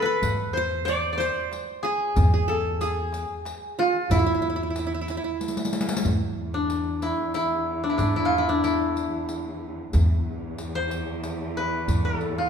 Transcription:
Already playing: A4
0.02 B4
0.22 E2, riq, darbuka dum
0.53 C5, riq
0.57 C5
0.85 D5, riq, darbuka tek
1.13 D5
1.18 C5, riq, darbuka tek
1.52 riq, darbuka tek
1.83 G#4
2.16 E2, riq, darbuka dum
2.34 G#4
2.48 A4
2.81 G#4, riq, darbuka tek
3.13 riq, darbuka tek
3.45 riq, darbuka tek
3.79 F4
4.10 E2 E4, riq, darbuka dum
4.19 E4
4.26 E4
4.35 E4
4.42 E4, darbuka ka
4.50 E4
4.56 E4
4.63 E4
4.70 E4
4.76 E4, riq, darbuka tek
4.87 E4
4.94 E4
5.01 E4
5.08 E4, riq, darbuka tek
5.17 E4
5.24 E4
5.41 riq, darbuka tek
5.48 riq
5.57 riq, darbuka ka
5.65 riq
5.73 riq, darbuka tek
5.81 riq
5.89 riq, darbuka ka
5.97 riq
6.05 E2, riq, darbuka dum
6.38 darbuka ka
6.54 D4
6.70 riq, darbuka tek
7.02 E4, riq, darbuka tek
7.34 E4, riq, darbuka tek
7.84 D4
7.90 E4
7.98 E2 D4, riq, darbuka dum
8.16 E4
8.25 F4
8.31 darbuka ka
8.38 E4
8.49 D4
8.64 E4, riq, darbuka tek
8.96 riq, darbuka tek
9.29 riq, darbuka tek
9.93 E2, riq, darbuka dum
10.26 darbuka ka
10.58 riq, darbuka tek
10.75 C5
10.90 riq, darbuka tek
11.24 riq, darbuka tek
11.57 B4
11.88 E2, riq, darbuka dum
12.05 A4
12.20 riq, darbuka ka
12.38 F4

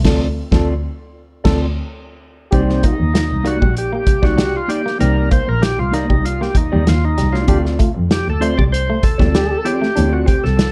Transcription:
0.04 D2 C4 F4 A4 D5, kick, snare, crash
0.51 D2 C4 F4 A4 D5, kick, snare
1.44 D2 C4 F4 A4 D5, kick, snare, crash
2.51 C2 A#3 C4 D#4 G4 D5, kick, closed hi-hat
2.69 muted clean electric guitar stroke, snare
2.83 A#3 D#4 F4, kick, closed hi-hat
2.98 D#2, muted clean electric guitar stroke
3.13 muted clean electric guitar stroke, snare, closed hi-hat
3.30 C2, muted clean electric guitar stroke
3.44 A#3 D#4 F#4 G4 D5, closed hi-hat
3.62 A#1 G3, muted clean electric guitar stroke, kick
3.76 G4, muted clean electric guitar stroke, closed hi-hat
3.92 A#3 G4, muted clean electric guitar stroke
4.07 C2, muted clean electric guitar stroke, kick, closed hi-hat
4.22 C2 G3 A#3 D#4 F#4 G4 D5, kick, snare
4.38 G3 G4, snare, closed hi-hat
4.54 F4, muted clean electric guitar stroke
4.68 A#3 D#4 G4 D5, muted clean electric guitar stroke, closed hi-hat
4.84 A#3, muted clean electric guitar stroke, snare
4.99 C2 A#3 C4 D#4 G4 A#4 D5, closed hi-hat
5.16 muted clean electric guitar stroke
5.31 A#3 C5, kick, closed hi-hat
5.46 A#1 A#4, muted clean electric guitar stroke
5.60 G4, muted clean electric guitar stroke, snare, closed hi-hat
5.77 C2 F4, muted clean electric guitar stroke
5.91 A#3 D#4 G4 D5, snare, closed hi-hat
6.09 C2 G3, muted clean electric guitar stroke, kick
6.23 F4, muted clean electric guitar stroke, closed hi-hat
6.40 A#3 G4, muted clean electric guitar stroke, snare
6.55 D#2 D#4, muted clean electric guitar stroke, kick, closed hi-hat
6.72 D#2 G3 A#3 D#4 G4 D5
6.87 D#2 F4, snare, closed hi-hat
7.02 D#4, muted clean electric guitar stroke
7.18 C2 G3, snare, closed hi-hat
7.33 A#3 D#4 F4 G4 D5, snare
7.47 D2 C4 D4 F4 G4 A4 D5, kick, closed hi-hat
7.65 muted clean electric guitar stroke, snare
7.79 A3 F4, kick, closed hi-hat
7.94 F2, muted clean electric guitar stroke
8.10 G4, muted clean electric guitar stroke, snare, closed hi-hat
8.25 D2, muted clean electric guitar stroke
8.30 A4
8.40 A3 C4 F4 A4 C5 D5, closed hi-hat
8.57 C2 G3 D5, muted clean electric guitar stroke, kick
8.72 C5, muted clean electric guitar stroke, closed hi-hat
8.88 A3, muted clean electric guitar stroke
9.03 D2 A4, muted clean electric guitar stroke, kick, closed hi-hat
9.18 D2 G3 C4 F4 A4 D5, kick, snare
9.35 G3 G4, snare, closed hi-hat
9.50 muted clean electric guitar stroke
9.65 C4 F4 G4 A4 D5, muted clean electric guitar stroke, closed hi-hat
9.82 A3, muted clean electric guitar stroke, snare
9.96 D2 B3 D4 E4 G#4 C#5, closed hi-hat
10.08 C4 F4 A4 D5
10.13 F#4, muted clean electric guitar stroke
10.26 C4 G4, kick, closed hi-hat
10.43 C2 A4, muted clean electric guitar stroke, snare
10.58 muted clean electric guitar stroke, snare, closed hi-hat

